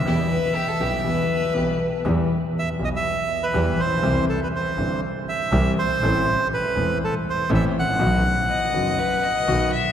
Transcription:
X:1
M:4/4
L:1/16
Q:1/4=121
K:Em
V:1 name="Bandoneon"
e12 z4 | z4 e2 ^d e4 B3 c2- | c2 A B c4 z2 e4 c2- | c4 B4 A2 c2 e2 f2- |
f12- f2 z2 |]
V:2 name="Violin"
z2 B2 G A G2 B8 | z16 | z16 | z16 |
z4 ^d4 B2 d4 e2 |]
V:3 name="String section"
[B,EG]2 z4 [B,EG]2 [B,EG]2 z2 [B,EG]2 z2 | z16 | z16 | z16 |
z16 |]
V:4 name="Grand piano" clef=bass
[E,,E,G,B,G]2 z4 [B,,,B,,E,G,B,G]2 [E,,E,G,B,G]2 z2 [B,,,B,,E,G,B,G]2 z2 | [E,,E,G,B,G]2 z4 [B,,,B,,E,G,B,G]2 z4 [E,,E,G,B,G]2 z/2 A,,,/2 ^A,,,/2 B,,,/2 | [C,,C,E,G,CG]2 z4 [G,,,G,,E,G,CG]2 z4 [C,,C,E,G,CG]2 z2 | [A,,,A,,E,A,CA]2 z4 [E,,,E,,E,A,CA]2 z4 [A,,,A,,E,A,CA]2 z/2 ^G,,,/2 A,,,/2 ^A,,,/2 |
[B,,,B,,^D,F,B,F]2 z4 [F,,,F,,D,F,B,F]2 z4 [B,,,B,,D,F,B,F]2 z2 |]
V:5 name="Double bass" clef=bass
E,,2 z4 B,,,2 E,,2 z2 B,,,2 z2 | E,,2 z4 B,,,2 z4 E,,2 ^A,,,2 | C,,2 z4 G,,,2 z4 C,,2 z2 | A,,,2 z4 E,,,2 z4 A,,,2 A,,,2 |
B,,,2 z4 F,,,2 z4 B,,,2 z2 |]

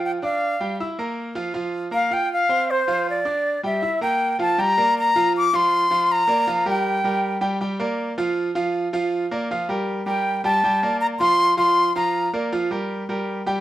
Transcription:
X:1
M:4/4
L:1/8
Q:1/4=159
K:Gdor
V:1 name="Flute"
g f3 z4 | z2 f g f2 c2 | d3 e2 g2 a | b2 b2 d' c'3 |
b3 g4 z | z8 | z4 z g2 a- | a2 b c'2 c'2 b- |
b z6 z |]
V:2 name="Grand piano"
[F,Ff] [Ddd']2 [G,Gg] [Eee'] [B,Bb]2 [F,Ff] | [F,Ff]2 [B,Bb] [Fff']2 [Ccc']2 [F,Ff]- | [F,Ff] [Ddd']2 [G,Gg] [Eee'] [B,Bb]2 [F,Ff] | [G,Gg] [B,Bd]2 [F,Ff]2 [F,Ff]2 [F,Ff]- |
[F,Ff] [B,Bd] [F,Ff] [G,GB]2 [G,GB]2 [G,Gg] | [G,Gg] [B,Bd]2 [F,Ff]2 [F,Ff]2 [F,Ff]- | [F,Ff] [B,Bd] [F,Ff] [G,GB]2 [G,GB]2 [G,Gg] | [G,Gg] [B,Bd]2 [F,Ff]2 [F,Ff]2 [F,Ff]- |
[F,Ff] [B,Bd] [F,Ff] [G,GB]2 [G,GB]2 [G,Gg] |]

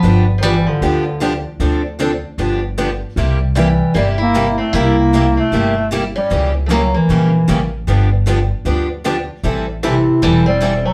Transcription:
X:1
M:4/4
L:1/16
Q:"Swing" 1/4=153
K:C
V:1 name="Steel-string acoustic guitar"
[D,F,B,DG]2 z2 [D,F,B,DG] z3 [D,F,B,DG]2 z2 [D,F,B,DG] z3 | [D,F,CDA]2 z2 [D,F,CDA] z3 [D,F,B,DG]2 z2 [D,F,B,DG] z3 | [C,G,_B,EG]2 z2 [C,G,B,EG] z3 [C,G,B,EG]2 z2 [C,G,B,EG] z3 | [C,G,_B,EG]2 z2 [C,G,B,EG] z3 [C,G,B,EG]2 z2 [C,G,B,EG] z3 |
[^C,E,^A,^CG]2 z2 [C,E,A,CG] z3 [C,E,A,CG]2 z2 [C,E,A,CG] z3 | [D,F,B,DG]2 z2 [D,F,B,DG] z3 [D,F,B,DG]2 z2 [D,F,B,DG] z3 | [E,G,CEA]2 z2 [E,G,CEA] z3 [E,G,CEA]2 z2 [E,G,CEA] z3 |]
V:2 name="Steel-string acoustic guitar"
[D,F,B,DG]2 z2 [D,F,B,DG] z3 [D,F,B,DG]2 z2 [D,F,B,DG] z3 | [D,F,CDA]2 z2 [D,F,CDA] z3 [D,F,B,DG]2 z2 [D,F,B,DG] z3 | [C,G,_B,EG]2 z2 [C,G,B,EG] z3 [C,G,B,EG]2 z2 [C,G,B,EG] z3 | [C,G,_B,EG]2 z2 [C,G,B,EG] z3 [C,G,B,EG]2 z2 [C,G,B,EG] z3 |
[^C,G,^A,EG]2 z2 [C,G,A,EG] z3 [C,G,A,EG]2 z2 [C,G,A,EG] z3 | [D,F,B,DG]2 z2 [D,F,B,DG] z3 [D,F,B,DG]2 z2 [D,F,B,DG] z3 | [E,G,CEA]2 z2 [E,G,CEA] z3 [E,G,CEA]2 z2 [E,G,CEA] z3 |]
V:3 name="Steel-string acoustic guitar"
B,2 z3/2 F,/2 G,2 F,8 z2 | z16 | z4 G,4 _B,2 E4 C2 | E6 C6 z2 ^C2- |
^C2 z3/2 A,/2 ^A,2 A,8 z2 | z16 | z4 E,4 G,2 C4 A,2 |]
V:4 name="Bass clarinet" clef=bass
F,2 z3/2 _E,/2 =E,2 D,8 z2 | z16 | z4 E,4 G,2 _B,4 A,2 | _B,6 A,6 z2 G,2- |
G,2 z3/2 F,/2 ^F,2 E,8 z2 | z16 | z4 C,4 E,2 G,4 ^F,2 |]
V:5 name="Upright bass" clef=bass
G,,,8 D,,8 | D,,8 G,,,8 | C,,8 G,,,8 | C,,8 G,,,8 |
^C,,8 ^A,,,4 =A,,,4 | G,,,8 D,,8 | A,,,8 E,,,8 |]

